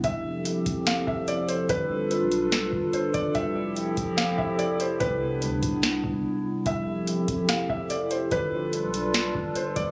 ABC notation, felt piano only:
X:1
M:4/4
L:1/8
Q:1/4=145
K:Flyd
V:1 name="Felt piano"
e2 z2 f e d c | B2 z4 c d | e2 z2 f e d c | B2 z6 |
e2 z2 f e d c | B2 z4 c d |]